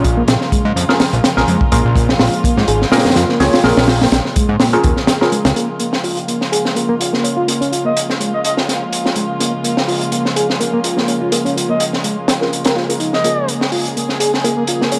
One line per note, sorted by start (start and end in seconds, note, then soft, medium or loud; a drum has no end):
0.00 0.23 A#1 loud
0.00 5.52 C#3 medium
0.00 5.52 F3 medium
0.00 5.52 G#3 medium
0.00 5.52 A#3 medium
0.00 5.52 F4 medium
0.04 0.16 F4 medium
0.04 kick medium
0.04 closed hi-hat medium
0.17 0.23 A#3 loud
0.28 0.37 A#1 medium
0.28 snare loud
0.28 closed hi-hat medium
0.41 snare soft
0.52 0.63 G#3 medium
0.52 kick medium
0.52 closed hi-hat medium
0.65 0.73 G#2 loud
0.76 0.85 F2 medium
0.76 closed hi-hat medium
0.89 1.06 C#4 medium
0.89 1.06 F4 medium
0.89 1.06 G#4 medium
0.89 1.06 A#4 medium
0.89 snare medium
1.00 snare loud
1.00 open hi-hat medium
1.13 1.21 A#1 medium
1.13 closed hi-hat soft
1.24 snare loud
1.24 closed hi-hat medium
1.37 1.45 A#1 medium
1.37 1.47 C#4 medium
1.37 1.47 F4 medium
1.37 1.47 G#4 medium
1.37 1.47 A#4 medium
1.37 snare medium
1.48 1.57 F2 medium
1.48 1.59 G#3 medium
1.48 closed hi-hat medium
1.61 kick loud
1.72 1.81 A#1 loud
1.72 1.83 A#3 medium
1.72 1.84 C#4 medium
1.72 1.84 F4 medium
1.72 1.84 G#4 medium
1.72 1.84 A#4 medium
1.72 kick loud
1.72 closed hi-hat medium
1.85 2.15 A#1 loud
1.96 2.07 A#3 medium
1.96 kick loud
1.96 closed hi-hat medium
2.09 snare medium
2.20 2.29 A#1 medium
2.20 2.33 F4 medium
2.20 snare loud
2.20 open hi-hat medium
2.33 closed hi-hat soft
2.44 2.57 A#3 medium
2.44 kick medium
2.44 closed hi-hat medium
2.57 2.65 G#2 loud
2.57 snare soft
2.68 2.85 G#1 loud
2.68 2.79 G#4 medium
2.68 closed hi-hat medium
2.82 snare soft
2.92 3.05 A#2 medium
2.92 3.04 A#3 medium
2.92 3.04 C#4 medium
2.92 3.04 F4 medium
2.92 3.04 G#4 medium
2.92 3.04 A#4 loud
2.92 snare medium
2.92 open hi-hat medium
2.98 snare medium
2.98 open hi-hat medium
3.05 3.14 F2 soft
3.05 3.11 A#3 loud
3.05 snare medium
3.05 open hi-hat medium
3.10 snare medium
3.10 open hi-hat medium
3.16 3.25 F2 medium
3.16 3.29 F4 medium
3.16 snare loud
3.16 closed hi-hat medium
3.29 3.52 A#3 loud
3.29 snare soft
3.40 3.49 C#2 medium
3.40 3.58 C#4 medium
3.40 3.58 F4 medium
3.40 3.58 G#4 medium
3.40 3.58 C#5 loud
3.40 snare medium
3.40 open hi-hat medium
3.53 3.63 F4 loud
3.53 snare loud
3.53 open hi-hat medium
3.64 3.73 A#1 loud
3.64 3.76 A#3 medium
3.64 3.82 C#4 medium
3.64 3.82 F4 medium
3.64 3.82 G#4 medium
3.64 3.82 A#4 loud
3.64 snare medium
3.64 open hi-hat medium
3.77 4.07 A#1 loud
3.77 3.87 C#4 loud
3.77 snare loud
3.77 open hi-hat medium
3.88 4.00 F4 medium
3.88 snare loud
3.88 open hi-hat medium
4.00 4.07 A#3 loud
4.00 snare loud
4.00 open hi-hat medium
4.12 4.21 A#1 medium
4.12 snare loud
4.12 closed hi-hat medium
4.25 snare soft
4.36 4.47 G#3 medium
4.36 kick loud
4.36 closed hi-hat medium
4.49 4.57 G#2 loud
4.60 4.77 A#2 medium
4.60 snare loud
4.60 open hi-hat medium
4.73 4.91 C#4 medium
4.73 4.91 F4 medium
4.73 4.91 G#4 medium
4.73 4.91 A#4 medium
4.73 closed hi-hat soft
4.84 4.93 D#2 medium
4.84 kick medium
4.84 closed hi-hat medium
4.97 snare soft
5.07 snare loud
5.07 closed hi-hat medium
5.21 5.31 C#4 medium
5.21 5.31 F4 medium
5.21 5.31 G#4 medium
5.21 5.31 A#4 medium
5.21 snare medium
5.32 5.43 G#3 medium
5.32 closed hi-hat medium
5.45 5.53 C#2 medium
5.45 snare loud
5.45 closed hi-hat medium
5.56 14.99 C#3 medium
5.56 14.99 F3 medium
5.56 14.99 G#3 medium
5.56 14.99 A#3 medium
5.56 5.67 A#3 medium
5.56 5.68 C#4 medium
5.56 13.23 F4 medium
5.56 5.68 F4 medium
5.56 5.68 G#4 medium
5.56 5.68 A#4 medium
5.56 closed hi-hat medium
5.80 5.91 A#3 medium
5.80 closed hi-hat medium
5.93 snare medium
6.04 6.17 F4 medium
6.04 open hi-hat medium
6.17 closed hi-hat soft
6.28 6.41 A#3 medium
6.28 closed hi-hat medium
6.41 snare soft
6.52 6.63 G#4 medium
6.52 closed hi-hat medium
6.65 snare soft
6.76 6.88 A#3 medium
6.76 6.88 C#4 medium
6.76 6.88 F4 medium
6.76 6.88 G#4 medium
6.76 6.88 A#4 medium
6.76 closed hi-hat medium
6.89 6.95 A#3 medium
7.00 7.12 F4 medium
7.00 closed hi-hat medium
7.13 7.36 A#3 loud
7.13 snare soft
7.24 7.43 C#4 medium
7.24 7.43 F4 medium
7.24 7.43 G#4 medium
7.24 7.43 C#5 medium
7.24 closed hi-hat medium
7.37 7.47 F4 medium
7.48 7.60 A#3 medium
7.48 7.67 C#4 medium
7.48 7.67 F4 medium
7.48 7.67 G#4 medium
7.48 7.67 A#4 loud
7.48 closed hi-hat medium
7.61 7.71 C#4 loud
7.61 closed hi-hat soft
7.72 7.84 F4 medium
7.72 closed hi-hat medium
7.85 7.91 A#3 medium
7.85 7.99 D#5 medium
7.97 closed hi-hat medium
8.10 snare soft
8.20 8.31 G#3 medium
8.20 closed hi-hat medium
8.34 8.40 D#5 medium
8.44 8.53 D#5 medium
8.44 closed hi-hat medium
8.57 8.75 C#4 medium
8.57 8.75 F4 medium
8.57 8.75 G#4 medium
8.57 8.75 A#4 medium
8.57 snare soft
8.68 snare soft
8.68 closed hi-hat medium
8.93 closed hi-hat medium
9.05 9.15 C#4 medium
9.05 9.15 F4 medium
9.05 9.15 G#4 medium
9.05 9.15 A#4 medium
9.05 snare soft
9.16 9.27 G#3 medium
9.16 closed hi-hat medium
9.40 9.51 A#3 medium
9.40 9.52 C#4 medium
9.40 9.52 F4 medium
9.40 9.52 G#4 medium
9.40 9.52 A#4 medium
9.40 closed hi-hat medium
9.64 9.75 A#3 medium
9.64 closed hi-hat medium
9.77 snare medium
9.88 10.00 F4 medium
9.88 open hi-hat medium
10.01 closed hi-hat soft
10.12 10.25 A#3 medium
10.12 closed hi-hat medium
10.25 snare soft
10.36 10.47 G#4 medium
10.36 closed hi-hat medium
10.50 snare soft
10.60 10.72 A#3 medium
10.60 10.72 C#4 medium
10.60 10.72 F4 medium
10.60 10.72 G#4 medium
10.60 10.72 A#4 loud
10.60 closed hi-hat medium
10.73 10.79 A#3 medium
10.84 10.97 F4 medium
10.84 closed hi-hat medium
10.97 11.20 A#3 loud
10.97 snare soft
11.08 11.27 C#4 medium
11.08 11.27 F4 medium
11.08 11.27 G#4 medium
11.08 11.27 C#5 medium
11.08 closed hi-hat medium
11.21 11.31 F4 medium
11.32 11.44 A#3 medium
11.32 11.51 C#4 medium
11.32 11.50 F4 medium
11.32 11.51 G#4 medium
11.32 11.51 A#4 loud
11.32 closed hi-hat medium
11.45 11.55 C#4 medium
11.45 closed hi-hat soft
11.56 11.68 F4 medium
11.56 closed hi-hat medium
11.69 11.75 A#3 loud
11.69 11.83 D#5 medium
11.80 closed hi-hat medium
11.93 snare soft
12.04 12.15 G#3 medium
12.04 closed hi-hat medium
12.28 snare loud
12.28 closed hi-hat medium
12.41 12.59 C#4 medium
12.41 12.59 F4 medium
12.41 12.59 G#4 medium
12.41 12.59 A#4 medium
12.41 snare soft
12.53 closed hi-hat medium
12.64 12.75 A#4 medium
12.64 snare medium
12.64 closed hi-hat medium
12.76 12.83 F4 medium
12.76 snare soft
12.89 12.99 C#4 medium
12.89 13.00 F4 medium
12.89 12.99 G#4 medium
12.89 12.99 A#4 medium
12.89 closed hi-hat medium
13.00 13.12 D#4 medium
13.00 closed hi-hat medium
13.13 13.48 D#5 medium
13.13 snare soft
13.24 13.35 A#3 medium
13.24 13.36 C#4 medium
13.24 13.36 F4 medium
13.24 13.36 G#4 medium
13.24 14.99 G#4 medium
13.24 13.36 A#4 medium
13.24 closed hi-hat medium
13.48 13.59 A#3 medium
13.48 closed hi-hat medium
13.61 snare soft
13.72 13.85 F4 medium
13.72 open hi-hat medium
13.85 closed hi-hat soft
13.96 14.09 A#3 medium
13.96 closed hi-hat medium
14.09 snare soft
14.20 14.31 G#4 medium
14.20 closed hi-hat medium
14.34 snare soft
14.44 14.56 A#3 medium
14.44 14.56 C#4 medium
14.44 14.56 F4 medium
14.44 14.56 G#4 medium
14.44 14.56 A#4 loud
14.44 closed hi-hat medium
14.57 14.63 A#3 medium
14.67 14.81 F4 medium
14.67 closed hi-hat medium
14.81 14.99 A#3 medium
14.81 snare soft
14.92 14.99 C#4 medium
14.92 14.99 F4 medium
14.92 14.99 G#4 medium
14.92 14.99 C#5 medium
14.92 closed hi-hat medium